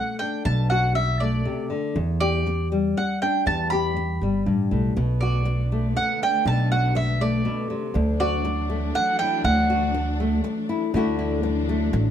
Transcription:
Already playing: A3 F#4 F#5
0.19 D4 G5
0.45 B1 B2 A5
0.70 F#4 F#5
0.95 E5, muted nylon-string guitar stroke
1.20 A3 D5
1.45 C3
1.70 D3
1.96 E2
2.20 G4 D5
2.46 muted nylon-string guitar stroke
2.72 G3
2.97 F#5, muted nylon-string guitar stroke
3.22 D4 G5
3.46 E2 A5
3.70 G4 B5
3.97 muted nylon-string guitar stroke
4.21 G1 G3
4.46 A1 G2
4.71 B1 A2
4.94 B1 B2 D3 A3 B3
5.21 F#4 D5
5.45 muted nylon-string guitar stroke
5.72 A3
5.97 F#5, muted nylon-string guitar stroke
6.22 D4 G5
6.45 B1 B2 A5
6.72 F#4 F#5
6.95 E5, muted nylon-string guitar stroke
7.21 A3 D5
7.45 B2
7.70 C3
7.94 D2 E3 F#3 D4
8.20 F#4 D5
8.45 muted nylon-string guitar stroke
8.70 A3
8.95 F#5, muted nylon-string guitar stroke
9.19 E4 G5
9.44 D2 F#5
9.70 F#4
9.94 muted nylon-string guitar stroke
10.20 A3
10.44 muted nylon-string guitar stroke
10.69 E4
10.94 D2 D3 E3 F#3 A3 D4 E4 F#4
11.19 E4
11.43 muted nylon-string guitar stroke
11.69 A3
11.93 A1, muted nylon-string guitar stroke

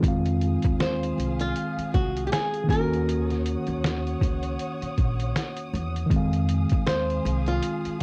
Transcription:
Already playing: D#3 F4
0.01 F2 G#3 C4 G#4 F5 D#6, kick, closed hi-hat
0.08 F5
0.26 closed hi-hat
0.41 closed hi-hat
0.62 D#2, kick, closed hi-hat
0.80 C5, finger snap, snare, closed hi-hat
1.03 closed hi-hat
1.18 C2, closed hi-hat
1.39 F4, closed hi-hat
1.56 closed hi-hat
1.78 muted upright bass stroke, closed hi-hat
1.94 C2 F#4, kick, closed hi-hat
2.17 closed hi-hat
2.27 G4
2.32 G#4, finger snap, snare, closed hi-hat
2.54 closed hi-hat
2.64 D#3 A#3
2.68 D#2 C#4 A#4 C#5 F#5, kick, closed hi-hat
2.74 F4
2.81 F#4
2.94 closed hi-hat
3.09 closed hi-hat
3.30 snare, closed hi-hat
3.46 closed hi-hat
3.67 D#2, closed hi-hat
3.84 finger snap, snare, closed hi-hat
4.07 closed hi-hat
4.21 C#2, kick, closed hi-hat
4.43 closed hi-hat
4.59 closed hi-hat
4.82 muted upright bass stroke, closed hi-hat
4.98 A#1, kick, closed hi-hat
5.20 closed hi-hat
5.36 finger snap, snare, closed hi-hat
5.57 closed hi-hat
5.74 E2, closed hi-hat
5.96 closed hi-hat
6.06 D#3 G#3 G#4 F5
6.10 F2 C4, kick, closed hi-hat
6.16 F5
6.33 closed hi-hat
6.49 closed hi-hat
6.69 D#2, kick, closed hi-hat
6.86 C5, finger snap, snare, closed hi-hat
7.10 closed hi-hat
7.25 C2, closed hi-hat
7.46 F4, closed hi-hat
7.62 closed hi-hat
7.85 muted upright bass stroke, closed hi-hat

